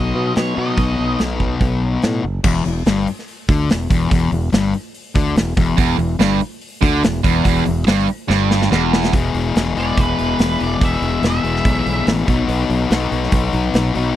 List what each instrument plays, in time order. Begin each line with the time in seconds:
Already playing: fingered electric bass B1, distorted electric guitar B2 F#3 B3 D#4 F#4, lead electric guitar D#5
0.15 fingered electric bass B2
0.36 fingered electric bass B2, lead electric guitar C#5, snare, open hi-hat
0.56 distorted electric guitar B2 F#3 B3 D#4 F#4, fingered electric bass B2, lead electric guitar D#5
0.78 fingered electric bass B1, kick, open hi-hat
0.99 fingered electric bass B1
1.19 fingered electric bass B1, snare, open hi-hat
1.40 kick
1.61 fingered electric bass B1, kick, open hi-hat
2.02 fingered electric bass A2, snare, open hi-hat
2.24 fingered electric bass F#1
2.44 fingered electric bass E1, distorted electric guitar E2, kick, crash
2.65 fingered electric bass E1, distorted electric guitar E2, open hi-hat
2.86 fingered electric bass G1, distorted electric guitar G2, snare, open hi-hat
3.07 open hi-hat
3.19 snare
3.28 open hi-hat
3.49 fingered electric bass D2, distorted electric guitar D3, kick, open hi-hat
3.70 fingered electric bass E1, distorted electric guitar E2, snare, open hi-hat
3.90 fingered electric bass E1, distorted electric guitar E2, kick, open hi-hat
4.11 fingered electric bass E1, distorted electric guitar E2, kick, open hi-hat
4.32 fingered electric bass E1, distorted electric guitar E2, open hi-hat
4.53 fingered electric bass G1, distorted electric guitar G2, snare, open hi-hat
4.74 open hi-hat
4.95 open hi-hat
5.15 fingered electric bass D2, distorted electric guitar D3, kick, open hi-hat
5.36 fingered electric bass E1, distorted electric guitar E2, snare, open hi-hat
5.57 fingered electric bass E1, distorted electric guitar E2, kick, open hi-hat
5.77 fingered electric bass E1, distorted electric guitar E2, kick, open hi-hat
5.98 fingered electric bass E1, distorted electric guitar E2, open hi-hat
6.19 fingered electric bass G1, distorted electric guitar G2, snare, open hi-hat
6.41 open hi-hat
6.61 open hi-hat
6.82 fingered electric bass D2, distorted electric guitar D3, kick, open hi-hat
7.03 fingered electric bass E1, distorted electric guitar E2, snare, open hi-hat
7.24 fingered electric bass E1, distorted electric guitar E2, kick, open hi-hat
7.45 fingered electric bass E1, distorted electric guitar E2, kick, open hi-hat
7.66 fingered electric bass E1, distorted electric guitar E2, open hi-hat
7.87 fingered electric bass G1, distorted electric guitar G2, snare, open hi-hat
8.08 open hi-hat
8.28 fingered electric bass G1, distorted electric guitar G2, snare
8.51 snare
8.62 snare
8.71 fingered electric bass E1, distorted electric guitar E2, snare
8.93 snare
9.04 snare
9.12 fingered electric bass E1, distorted electric guitar E2 B2 E3 G#3 B3 G#4, kick, open hi-hat
9.35 fingered electric bass E1, open hi-hat
9.56 fingered electric bass E1, snare, open hi-hat
9.75 fingered electric bass E1, distorted electric guitar E2 B2 E3 G#3 B3 G#4, lead electric guitar D5, open hi-hat
9.97 fingered electric bass E1, lead electric guitar B4, kick, open hi-hat
10.19 fingered electric bass E1, open hi-hat
10.39 fingered electric bass E1, snare, open hi-hat
10.60 fingered electric bass E1, lead electric guitar D5, open hi-hat
10.80 fingered electric bass E1, distorted electric guitar E2 B2 E3 G#3 B3 G#4, kick, open hi-hat
10.85 lead electric guitar E5
11.02 fingered electric bass E1, open hi-hat
11.22 fingered electric bass E1, lead electric guitar E5, snare, open hi-hat
11.43 fingered electric bass E1, distorted electric guitar E2 B2 E3 G#3 B3 G#4, open hi-hat
11.56 snare
11.65 fingered electric bass B1, kick, open hi-hat
11.86 fingered electric bass B1, open hi-hat
12.07 fingered electric bass A1, snare, open hi-hat
12.26 fingered electric bass B1, distorted electric guitar B2 F#3 B3 D#4 F#4, kick, open hi-hat
12.48 fingered electric bass B1, open hi-hat
12.70 fingered electric bass B1, open hi-hat
12.90 fingered electric bass B1, distorted electric guitar B2 F#3 B3 D#4 F#4, snare, open hi-hat
13.12 fingered electric bass B1, open hi-hat
13.23 snare
13.32 fingered electric bass B1, kick, open hi-hat
13.53 fingered electric bass B1, open hi-hat
13.74 fingered electric bass B1, snare, open hi-hat
13.94 fingered electric bass B1, distorted electric guitar B2 F#3 B3 D#4 F#4, open hi-hat